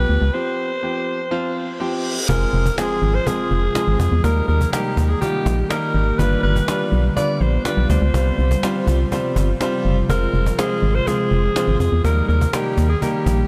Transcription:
Already playing: grand piano F3 B3 G4, alto saxophone B4
0.09 fm bass D2
0.22 fm bass C#2
0.33 grand piano F3 C4 G4, alto saxophone C5
0.82 grand piano F3 C4 G4
1.31 grand piano F3 C4 F4, reverse cymbal
1.80 grand piano F3 C4 G4
2.29 fm bass F1, ambient pad C3 F3 G#3 F4, grand piano F3 G#3 C4 G#4, alto saxophone A#4, cajon bass, impact
2.53 fm bass F1, cajon slap
2.66 cajon bass
2.78 grand piano F3 G#3 C4 G#4, alto saxophone G#4, cajon slap
3.02 fm bass G#1, cajon slap
3.15 alto saxophone C5
3.27 grand piano F3 G#3 C4 G#4, alto saxophone G#4, cajon bass
3.51 fm bass F1, cajon slap
3.75 grand piano F3 G#3 C4 G#4, cajon slap
3.88 fm bass G#1
4.00 fm bass F2, alto saxophone G#4, cajon bass
4.12 fm bass E2
4.24 fm bass D#2, ambient pad D#3 G3 A#3 G4, grand piano G3 A#3 D#4 A#4, alto saxophone A#4, cajon bass
4.37 cajon slap
4.48 fm bass D#2, alto saxophone A#4, cajon slap
4.61 cajon bass
4.72 grand piano G3 A#3 D#4 A#4, alto saxophone G4, cajon slap
4.97 fm bass D#2, cajon bass
5.09 alto saxophone G#4
5.21 grand piano G3 A#3 D#4 F4, alto saxophone G4, cajon bass
5.46 fm bass A#1, cajon bass
5.70 grand piano G3 A#3 D#4 A#4, alto saxophone A#4, cajon slap
5.95 fm bass G#1
6.19 fm bass G1, ambient pad D3 B3 F4, grand piano G3 D4 F4 B4, alto saxophone B4, cajon bass
6.32 cajon slap
6.43 fm bass G1, alto saxophone B4, cajon slap
6.56 cajon bass
6.68 grand piano G3 D4 F4 B4, cajon slap
6.92 fm bass B1, cajon slap
7.16 grand piano G3 D4 F4 B4, alto saxophone D5, cajon bass
7.41 fm bass A#1, alto saxophone C5, cajon slap
7.65 grand piano G3 D4 F4 D5, alto saxophone B4, cajon slap
7.77 fm bass B1
7.90 fm bass D2, alto saxophone C5, cajon bass
8.02 fm bass C#2
8.14 fm bass C2, ambient pad C3 F3, grand piano G3 C4 F4 C5, cajon bass
8.27 cajon slap
8.38 fm bass C2, cajon slap
8.51 cajon bass
8.63 grand piano G3 C4 F4 C5, cajon slap
8.87 fm bass C2, cajon bass
9.12 grand piano G3 C4 F4 C5, cajon bass
9.36 fm bass G1, cajon bass
9.61 grand piano G3 C4 F4 C5, cajon slap
9.85 fm bass F#1
9.97 cajon slap
10.09 fm bass F1, ambient pad F3 G#3, grand piano G#3 C4 F4 C5, alto saxophone A#4, cajon bass
10.22 cajon slap
10.34 fm bass F1, cajon slap
10.46 cajon bass
10.58 grand piano G#3 C4 F4 C5, alto saxophone G#4, cajon slap
10.83 fm bass G#1, cajon slap
10.95 alto saxophone C5
11.07 grand piano G#3 C4 F4 C5, alto saxophone G#4, cajon bass
11.31 fm bass F1, cajon slap
11.56 grand piano G#3 C4 F4 C5, cajon slap
11.68 fm bass G#1
11.80 fm bass F2, alto saxophone G#4, cajon bass
11.92 fm bass E2
12.04 fm bass D#2, ambient pad D#3 G3 A#3 G4, grand piano G3 A#3 D#4 A#4, alto saxophone A#4, cajon bass
12.17 cajon slap
12.29 fm bass D#2, alto saxophone A#4, cajon slap
12.41 cajon bass
12.53 grand piano G3 A#3 D#4 A#4, alto saxophone G4, cajon slap
12.78 fm bass D#2, cajon bass
12.90 alto saxophone G#4
13.02 grand piano G3 A#3 D#4 A#4, alto saxophone G4, cajon bass
13.26 fm bass A#1, cajon bass

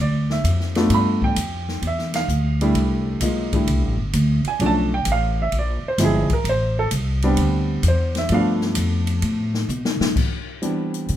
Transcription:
Already playing: upright bass D2
0.01 grand piano D5
0.30 grand piano E5, snare
0.44 upright bass F2, kick, hi-hat pedal, ride
0.60 snare
0.75 grand piano A3 B3 D4 F4, snare, ride
0.89 upright bass G2, kick, ride
0.94 grand piano B5
1.22 grand piano G5, kick
1.36 upright bass F2, kick, hi-hat pedal, ride
1.68 snare
1.82 upright bass E2, kick, ride
1.87 grand piano E5
1.98 snare
2.14 grand piano F5, snare, ride
2.28 upright bass D2, kick, hi-hat pedal
2.61 grand piano G3 A3 D4 E4, ride
2.75 upright bass C2, kick, ride
3.20 upright bass B1, grand piano G#3 A#3 D#4 F4, kick, hi-hat pedal, ride
3.53 grand piano G3 A3 D4 E4, kick, ride
3.67 upright bass C2, ride
3.81 upright bass A1
3.97 upright bass G1
4.13 upright bass D2, kick, hi-hat pedal, ride
4.45 grand piano G#5, muted upright bass stroke, ride
4.59 upright bass B1, grand piano F3 A3 C#4 D4, kick, ride
4.66 grand piano A5
4.94 grand piano G5
5.05 upright bass A1, kick, hi-hat pedal, ride
5.12 grand piano F5
5.42 grand piano E5
5.52 upright bass A#1, kick, ride
5.59 grand piano D5
5.83 muted upright bass stroke
5.88 grand piano C5
5.98 upright bass G1, grand piano F3 G#3 C4 E4, kick, snare, hi-hat pedal, ride
6.04 grand piano G#4
6.30 grand piano A#4, muted upright bass stroke, kick, ride
6.44 upright bass A1, kick, ride
6.49 grand piano C5
6.79 grand piano A4
6.91 upright bass C2, kick, hi-hat pedal, ride
7.22 grand piano G3 B3 C4 D4, ride
7.37 upright bass D2, kick, ride
7.83 upright bass E2, kick, hi-hat pedal, ride
7.88 grand piano C5
8.15 grand piano E5, snare, ride
8.29 upright bass G2, grand piano F3 A3 B3 D4, kick, ride
8.34 grand piano F5
8.61 snare
8.75 upright bass F2, kick, hi-hat pedal, ride
9.07 ride
9.22 upright bass A2, kick, ride
9.54 snare
9.69 upright bass B2, hi-hat pedal
9.85 snare
10.00 muted upright bass stroke, snare
10.16 kick, crash
10.62 grand piano E3 G3 B3 C4 D4, closed hi-hat
10.94 closed hi-hat
11.08 upright bass B2, closed hi-hat

